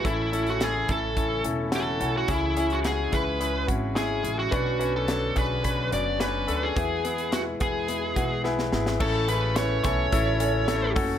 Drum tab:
CC |----------------|----------------|----------------|----------------|
HH |x-xxx-x-x-x-x-x-|x-xxx-x-x-x-x-x-|x-x-x-x-x-x-x-x-|x-xxx-x-x-x-----|
SD |----o-------o---|----o-------o---|----o-------o---|----o-------oooo|
BD |o-----o-o-------|o-----o---o-----|o-----o-o-------|o-----o---o-----|

CC |x---------------|
HH |--x-x-x-x-x-x-o-|
SD |----o-o-----o---|
BD |o-----o-o-----o-|